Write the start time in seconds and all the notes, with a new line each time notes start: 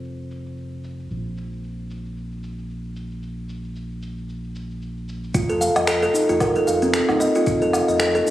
Already playing: F1
0.04 shaker
0.19 shaker
0.31 shaker
0.46 shaker
0.58 shaker
0.73 shaker
0.84 shaker
0.99 shaker
1.10 A#1, shaker
1.26 shaker
1.37 shaker
1.52 shaker
1.64 shaker
1.79 shaker
1.90 shaker
2.05 shaker
2.17 shaker
2.32 shaker
2.43 shaker
2.58 shaker
2.70 shaker
2.85 shaker
2.96 shaker
3.11 shaker
3.23 shaker
3.38 shaker
3.49 shaker
3.64 shaker
3.76 shaker
3.91 shaker
4.02 shaker
4.18 shaker
4.29 shaker
4.44 shaker
4.55 shaker
4.71 shaker
4.82 shaker
4.97 shaker
5.09 shaker
5.24 shaker
5.34 F1 F4, kick, open hi-hat, shaker
5.49 A4, open hi-hat, shaker
5.61 F5, shaker
5.76 F1 D#5, open hi-hat, low woodblock, shaker
5.87 A4, finger snap, open hi-hat, shaker
6.02 A4, open hi-hat, shaker
6.14 D#4, shaker
6.29 F1 F4, open hi-hat, shaker
6.40 A#4, kick, open hi-hat, low woodblock, shaker
6.55 A4, open hi-hat, shaker
6.67 F1 F5, shaker
6.82 C4, open hi-hat, shaker
6.94 A4, finger snap, open hi-hat, shaker
7.09 D#1 D#4, low woodblock, shaker
7.20 D#5, shaker
7.35 F4, open hi-hat, shaker
7.46 F1 F4, kick, open hi-hat, shaker
7.62 A4, open hi-hat, shaker
7.73 F5, low woodblock, shaker
7.88 F1 D#5, open hi-hat, shaker
8.00 A4, finger snap, open hi-hat, shaker
8.15 A4, open hi-hat, shaker
8.26 D#4, shaker